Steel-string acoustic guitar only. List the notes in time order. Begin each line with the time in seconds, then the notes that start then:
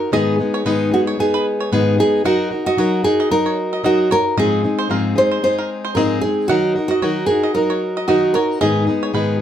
Already playing: D#4 F#4 A#4
0.11 G#2 D#3 G#3 B3 D#4 G#4
0.38 G#3 B3 D#4 G#4
0.65 G#2 D#3 G#3 B3 D#4 G#4
0.91 G#3 B3 D#4 G#4
1.18 G#3 B3 D#4 G#4
1.72 G#2 D#3 G#3 B3 D#4 G#4
1.98 G#3 B3 D#4 G#4
2.24 F#3 D#4 F#4 A#4
2.51 D#4 F#4 A#4
2.78 F#3 D#4 F#4 A#4
3.03 D#4 F#4 A#4
3.31 F#3 D#4 F#4 A#4
3.84 F#3 D#4 F#4 A#4
4.10 D#4 F#4 A#4
4.37 G#2 F3 G#3 C4 D#4 G#4
4.63 G#3 C4 D#4 G#4
4.89 G#2 F3 G#3 C4 D#4 G#4
5.16 G#3 C4 D#4 G#4
5.42 G#3 C4 D#4 G#4
5.96 G#2 F3 G#3 C4 D#4 G#4
6.22 G#3 C4 D#4 G#4
6.49 D#3 F#3 D#4 F#4 A#4
6.76 D#4 F#4 A#4
7.02 D#3 F#3 D#4 F#4 A#4
7.28 D#4 F#4 A#4
7.55 F#3 D#4 F#4 A#4
8.08 D#3 F#3 D#4 F#4 A#4
8.34 D#4 F#4 A#4
8.61 G#2 D#3 G#3 B3 D#4 G#4
8.87 G#3 B3 D#4 G#4
9.13 G#2 D#3 G#3 B3 D#4 G#4